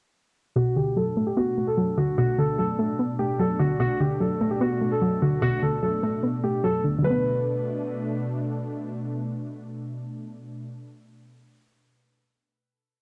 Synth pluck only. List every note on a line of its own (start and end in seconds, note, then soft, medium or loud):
0.56 1.57 B2 medium
0.76 1.77 D3 medium
0.96 1.76 F#3 medium
1.17 1.56 A3 loud
1.37 2.38 B3 medium
1.58 2.59 A3 medium
1.77 2.58 F#3 loud
1.98 2.37 D3 medium
2.18 3.19 B2 medium
2.38 3.40 D3 medium
2.59 3.38 F#3 medium
2.79 3.18 A3 loud
2.99 3.80 B3 medium
3.19 3.80 A3 medium
3.40 3.80 F#3 loud
3.60 3.80 D3 medium
3.80 4.81 B2 medium
4.00 5.02 D3 medium
4.20 5.00 F#3 medium
4.41 4.80 A3 loud
4.61 5.62 B3 medium
4.81 5.83 A3 medium
5.02 5.81 F#3 loud
5.22 5.61 D3 medium
5.42 6.43 B2 medium
5.62 6.64 D3 medium
5.83 6.62 F#3 medium
6.03 6.42 A3 loud
6.23 7.04 B3 medium
6.43 7.04 A3 medium
6.64 7.01 F#3 loud
6.84 6.97 D3 medium
6.98 10.59 D3 medium
7.02 10.63 F#3 medium
7.02 10.67 A3 medium
7.10 10.71 B3 medium